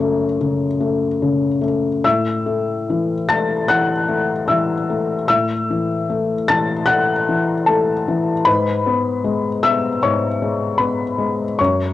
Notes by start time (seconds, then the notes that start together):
Already playing: F#2 C#3 C#5 C#6
0.00 A3
0.41 C#3
0.80 A3
1.22 C#3
1.61 A3
2.04 A2 E5 E6
2.46 A3
2.90 E3
3.29 A3 A5 A6
3.69 E3 F#5 F#6
4.08 A3
4.48 E3 E5 E6
4.90 A3
5.28 A2 E5 E6
5.70 E3
6.10 A3
6.48 E3 A5 A6
6.86 A3 F#5 F#6
7.29 E3
7.66 A3 A4 A5
8.08 E3
8.45 G#2 B4 B5
8.86 B3
9.24 G#3
9.63 B3 E5 E6
10.02 G#2 C#5 C#6
10.42 G#3
10.78 B3 B4 B5
11.18 G#3
11.59 F#2 C#5 C#6